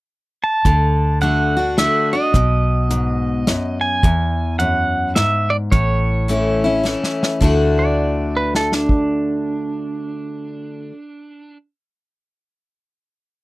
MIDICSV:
0, 0, Header, 1, 5, 480
1, 0, Start_track
1, 0, Tempo, 563910
1, 556, Time_signature, 3, 2, 24, 8
1, 11433, End_track
2, 0, Start_track
2, 0, Title_t, "Pedal steel guitar"
2, 0, Program_c, 0, 26
2, 371, Note_on_c, 0, 81, 90
2, 1032, Note_off_c, 0, 81, 0
2, 1035, Note_on_c, 0, 78, 84
2, 1518, Note_on_c, 0, 76, 76
2, 1530, Note_off_c, 0, 78, 0
2, 1813, Note_on_c, 0, 75, 85
2, 1823, Note_off_c, 0, 76, 0
2, 3243, Note_on_c, 0, 80, 80
2, 3295, Note_off_c, 0, 75, 0
2, 3902, Note_off_c, 0, 80, 0
2, 3906, Note_on_c, 0, 78, 88
2, 4388, Note_on_c, 0, 76, 69
2, 4404, Note_off_c, 0, 78, 0
2, 4683, Note_on_c, 0, 74, 70
2, 4696, Note_off_c, 0, 76, 0
2, 4733, Note_off_c, 0, 74, 0
2, 4865, Note_on_c, 0, 73, 74
2, 5795, Note_off_c, 0, 73, 0
2, 6630, Note_on_c, 0, 74, 67
2, 7097, Note_off_c, 0, 74, 0
2, 7121, Note_on_c, 0, 71, 73
2, 7272, Note_off_c, 0, 71, 0
2, 7286, Note_on_c, 0, 69, 68
2, 7435, Note_off_c, 0, 69, 0
2, 7446, Note_on_c, 0, 62, 83
2, 9849, Note_off_c, 0, 62, 0
2, 11433, End_track
3, 0, Start_track
3, 0, Title_t, "Steel-string acoustic guitar"
3, 0, Program_c, 1, 25
3, 558, Note_on_c, 1, 50, 78
3, 1025, Note_off_c, 1, 50, 0
3, 1035, Note_on_c, 1, 50, 47
3, 1044, Note_on_c, 1, 57, 48
3, 1048, Note_on_c, 1, 62, 57
3, 1054, Note_on_c, 1, 66, 49
3, 1320, Note_off_c, 1, 50, 0
3, 1323, Note_off_c, 1, 66, 0
3, 1325, Note_off_c, 1, 57, 0
3, 1327, Note_off_c, 1, 62, 0
3, 1333, Note_on_c, 1, 66, 55
3, 1351, Note_on_c, 1, 62, 45
3, 1509, Note_off_c, 1, 66, 0
3, 1518, Note_off_c, 1, 62, 0
3, 1518, Note_on_c, 1, 50, 49
3, 1523, Note_on_c, 1, 57, 50
3, 1529, Note_on_c, 1, 62, 50
3, 1535, Note_on_c, 1, 66, 57
3, 1801, Note_off_c, 1, 66, 0
3, 1802, Note_off_c, 1, 50, 0
3, 1804, Note_off_c, 1, 57, 0
3, 1807, Note_off_c, 1, 62, 0
3, 1811, Note_on_c, 1, 66, 56
3, 1829, Note_on_c, 1, 62, 44
3, 1988, Note_off_c, 1, 66, 0
3, 1997, Note_off_c, 1, 62, 0
3, 2003, Note_on_c, 1, 47, 76
3, 2473, Note_on_c, 1, 44, 73
3, 2922, Note_off_c, 1, 47, 0
3, 2936, Note_off_c, 1, 44, 0
3, 2955, Note_on_c, 1, 42, 68
3, 3417, Note_off_c, 1, 42, 0
3, 3440, Note_on_c, 1, 40, 74
3, 3909, Note_off_c, 1, 40, 0
3, 3913, Note_on_c, 1, 42, 76
3, 4375, Note_off_c, 1, 42, 0
3, 4392, Note_on_c, 1, 44, 67
3, 4854, Note_off_c, 1, 44, 0
3, 4872, Note_on_c, 1, 45, 79
3, 5347, Note_on_c, 1, 52, 44
3, 5356, Note_on_c, 1, 57, 50
3, 5361, Note_on_c, 1, 61, 59
3, 5368, Note_on_c, 1, 64, 51
3, 5635, Note_off_c, 1, 52, 0
3, 5639, Note_off_c, 1, 57, 0
3, 5642, Note_off_c, 1, 61, 0
3, 5642, Note_off_c, 1, 64, 0
3, 5652, Note_on_c, 1, 64, 55
3, 5666, Note_on_c, 1, 61, 45
3, 5795, Note_off_c, 1, 45, 0
3, 5818, Note_on_c, 1, 52, 49
3, 5823, Note_off_c, 1, 61, 0
3, 5827, Note_off_c, 1, 64, 0
3, 5830, Note_on_c, 1, 57, 53
3, 5833, Note_on_c, 1, 61, 51
3, 5840, Note_on_c, 1, 64, 47
3, 6287, Note_off_c, 1, 52, 0
3, 6293, Note_off_c, 1, 57, 0
3, 6294, Note_off_c, 1, 61, 0
3, 6298, Note_off_c, 1, 64, 0
3, 6304, Note_on_c, 1, 50, 76
3, 6314, Note_on_c, 1, 57, 76
3, 6324, Note_on_c, 1, 62, 77
3, 6333, Note_on_c, 1, 66, 86
3, 9283, Note_off_c, 1, 50, 0
3, 9293, Note_off_c, 1, 57, 0
3, 9304, Note_off_c, 1, 62, 0
3, 9312, Note_off_c, 1, 66, 0
3, 11433, End_track
4, 0, Start_track
4, 0, Title_t, "Fingered electric bass"
4, 0, Program_c, 2, 33
4, 554, Note_on_c, 2, 38, 74
4, 1592, Note_off_c, 2, 38, 0
4, 1992, Note_on_c, 2, 35, 80
4, 3030, Note_off_c, 2, 35, 0
4, 3434, Note_on_c, 2, 40, 75
4, 4471, Note_off_c, 2, 40, 0
4, 4870, Note_on_c, 2, 33, 80
4, 5908, Note_off_c, 2, 33, 0
4, 6309, Note_on_c, 2, 38, 80
4, 9229, Note_off_c, 2, 38, 0
4, 11433, End_track
5, 0, Start_track
5, 0, Title_t, "Drums"
5, 554, Note_on_c, 9, 36, 93
5, 554, Note_on_c, 9, 42, 50
5, 639, Note_off_c, 9, 36, 0
5, 639, Note_off_c, 9, 42, 0
5, 1028, Note_on_c, 9, 42, 53
5, 1114, Note_off_c, 9, 42, 0
5, 1513, Note_on_c, 9, 38, 81
5, 1513, Note_on_c, 9, 42, 59
5, 1598, Note_off_c, 9, 38, 0
5, 1598, Note_off_c, 9, 42, 0
5, 1990, Note_on_c, 9, 42, 52
5, 1992, Note_on_c, 9, 36, 92
5, 2075, Note_off_c, 9, 42, 0
5, 2077, Note_off_c, 9, 36, 0
5, 2475, Note_on_c, 9, 42, 57
5, 2560, Note_off_c, 9, 42, 0
5, 2955, Note_on_c, 9, 38, 76
5, 2955, Note_on_c, 9, 42, 57
5, 3040, Note_off_c, 9, 38, 0
5, 3040, Note_off_c, 9, 42, 0
5, 3432, Note_on_c, 9, 42, 51
5, 3433, Note_on_c, 9, 36, 96
5, 3517, Note_off_c, 9, 42, 0
5, 3518, Note_off_c, 9, 36, 0
5, 3914, Note_on_c, 9, 42, 55
5, 3999, Note_off_c, 9, 42, 0
5, 4390, Note_on_c, 9, 38, 78
5, 4390, Note_on_c, 9, 42, 53
5, 4476, Note_off_c, 9, 38, 0
5, 4476, Note_off_c, 9, 42, 0
5, 4870, Note_on_c, 9, 36, 90
5, 4870, Note_on_c, 9, 42, 48
5, 4955, Note_off_c, 9, 36, 0
5, 4955, Note_off_c, 9, 42, 0
5, 5352, Note_on_c, 9, 42, 52
5, 5437, Note_off_c, 9, 42, 0
5, 5829, Note_on_c, 9, 38, 49
5, 5914, Note_off_c, 9, 38, 0
5, 5988, Note_on_c, 9, 38, 62
5, 6074, Note_off_c, 9, 38, 0
5, 6152, Note_on_c, 9, 38, 80
5, 6238, Note_off_c, 9, 38, 0
5, 6310, Note_on_c, 9, 36, 86
5, 6312, Note_on_c, 9, 49, 70
5, 6395, Note_off_c, 9, 36, 0
5, 6397, Note_off_c, 9, 49, 0
5, 7274, Note_on_c, 9, 38, 58
5, 7359, Note_off_c, 9, 38, 0
5, 7423, Note_on_c, 9, 38, 62
5, 7508, Note_off_c, 9, 38, 0
5, 7568, Note_on_c, 9, 36, 76
5, 7653, Note_off_c, 9, 36, 0
5, 11433, End_track
0, 0, End_of_file